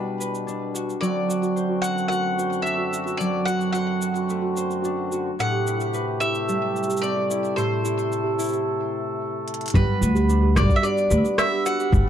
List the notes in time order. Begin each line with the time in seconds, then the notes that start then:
Already playing: B2 G3 D4 E4 F#4 B4
0.20 B4, cabasa
0.35 cabasa
0.47 D4, cabasa
0.74 F#4, cabasa
0.90 cabasa
1.01 F#2 D3 F#3 C4 F#4 D5, cabasa
1.29 F#4, cabasa
1.42 F#4, cabasa
1.56 C5, cabasa
1.69 F#4
1.82 F#4 F#5, cabasa
1.98 cabasa
2.08 A3 F#4 F#5, cabasa
2.37 F#4 C5, cabasa
2.53 cabasa
2.62 D4 E5
2.66 cabasa
2.78 F#4
2.92 F#4, cabasa
3.06 F#4, cabasa
3.17 F#3 D5, cabasa
3.45 F#4 F#5, cabasa
3.61 cabasa
3.73 F#4 C5 F#5, cabasa
4.02 F#4, cabasa
4.15 F#4, cabasa
4.30 A3, cabasa
4.42 F#4
4.57 C5, cabasa
4.71 cabasa
4.82 D4 F#4, cabasa
5.11 F#4, cabasa
5.39 A2 C3 A3 G4 F#5, cabasa
5.52 G4
5.67 E4, cabasa
5.79 G4, cabasa
5.94 B4, cabasa
6.20 E4 G4 E5, cabasa
6.35 cabasa
6.48 G3 G4, cabasa
6.76 cabasa
6.83 cabasa
6.88 G4, cabasa
6.97 cabasa
7.02 C4 D5, cabasa
7.15 G4
7.30 E4, cabasa
7.45 cabasa
7.56 A2 G4 A4 C5, cabasa
7.82 E4 G4, cabasa
7.99 cabasa
8.12 cabasa
8.24 G4
8.38 E4, cabasa
8.41 cabasa
8.48 G4, cabasa
8.50 cabasa
8.53 cabasa
9.48 closed hi-hat
9.54 closed hi-hat
9.61 closed hi-hat
9.66 closed hi-hat
9.68 closed hi-hat
9.70 G4, closed hi-hat
9.74 G1 G3 B3 B4, kick, cabasa
10.01 D2 F#4, cabasa
10.15 G4, cabasa
10.29 D4, cabasa
10.42 G4
10.55 G1 F#4 D5, kick, cross-stick, cabasa
10.70 kick, cabasa
10.76 E5
10.83 D4 G4 D5, cabasa
10.98 cabasa
11.10 D2 G4 B4, cabasa
11.25 cabasa
11.38 D4 E5, cross-stick, cabasa
11.52 G4
11.65 F#4 F#5, cabasa
11.80 G4, cabasa
11.92 G1 G3, kick, cabasa